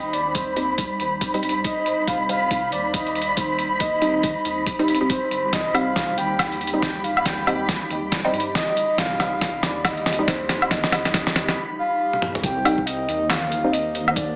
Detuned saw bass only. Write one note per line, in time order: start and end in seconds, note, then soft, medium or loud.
0.00 0.89 D#2 medium
1.00 1.20 D#2 medium
1.21 1.41 C2 medium
1.43 1.63 G2 medium
2.08 2.71 C2 loud
2.72 4.35 D#2 medium
4.45 4.65 D#2 medium
5.31 5.51 G1 medium
5.53 6.17 C2 loud
6.18 7.80 D#2 medium
7.90 8.10 D#2 medium
8.12 8.32 C2 loud
8.33 8.54 G2 medium
8.98 9.62 C2 loud
9.63 11.25 D#2 medium
11.35 11.56 D#2 medium
12.44 13.07 C2 loud
13.08 14.36 D#2 medium